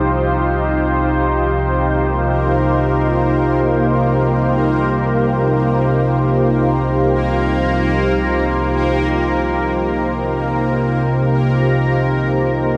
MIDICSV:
0, 0, Header, 1, 4, 480
1, 0, Start_track
1, 0, Key_signature, -3, "minor"
1, 0, Tempo, 500000
1, 12260, End_track
2, 0, Start_track
2, 0, Title_t, "Ambient pad"
2, 0, Program_c, 0, 92
2, 0, Note_on_c, 0, 63, 76
2, 0, Note_on_c, 0, 65, 69
2, 0, Note_on_c, 0, 67, 62
2, 0, Note_on_c, 0, 72, 71
2, 12260, Note_off_c, 0, 63, 0
2, 12260, Note_off_c, 0, 65, 0
2, 12260, Note_off_c, 0, 67, 0
2, 12260, Note_off_c, 0, 72, 0
2, 12260, End_track
3, 0, Start_track
3, 0, Title_t, "Synth texture"
3, 0, Program_c, 1, 99
3, 1598, Note_on_c, 1, 70, 72
3, 1600, Note_on_c, 1, 58, 70
3, 12260, Note_off_c, 1, 58, 0
3, 12260, Note_off_c, 1, 70, 0
3, 12260, End_track
4, 0, Start_track
4, 0, Title_t, "Synth drone"
4, 0, Program_c, 2, 95
4, 0, Note_on_c, 2, 36, 72
4, 0, Note_on_c, 2, 48, 64
4, 12260, Note_off_c, 2, 36, 0
4, 12260, Note_off_c, 2, 48, 0
4, 12260, End_track
0, 0, End_of_file